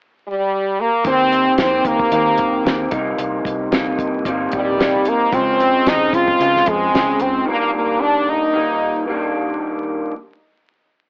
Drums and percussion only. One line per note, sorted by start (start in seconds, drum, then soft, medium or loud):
1.04 kick loud
1.04 closed hi-hat medium
1.32 closed hi-hat medium
1.58 snare medium
1.58 closed hi-hat medium
1.85 kick medium
1.85 closed hi-hat medium
1.99 kick medium
2.12 closed hi-hat medium
2.38 kick medium
2.38 closed hi-hat medium
2.66 snare medium
2.66 closed hi-hat medium
2.91 kick loud
2.91 closed hi-hat medium
3.18 closed hi-hat medium
3.45 kick medium
3.45 closed hi-hat medium
3.72 snare loud
3.72 closed hi-hat medium
3.99 kick medium
3.99 closed hi-hat medium
4.25 kick medium
4.25 closed hi-hat medium
4.51 kick medium
4.51 closed hi-hat medium
4.80 snare medium
4.80 closed hi-hat medium
5.05 closed hi-hat medium
5.33 kick loud
5.33 closed hi-hat medium
5.60 closed hi-hat medium
5.87 snare medium
5.87 closed hi-hat medium
6.13 kick medium
6.13 closed hi-hat medium
6.28 kick medium
6.40 closed hi-hat medium
6.56 snare soft
6.66 kick medium
6.66 closed hi-hat medium
6.95 snare loud
6.95 closed hi-hat medium
7.20 closed hi-hat medium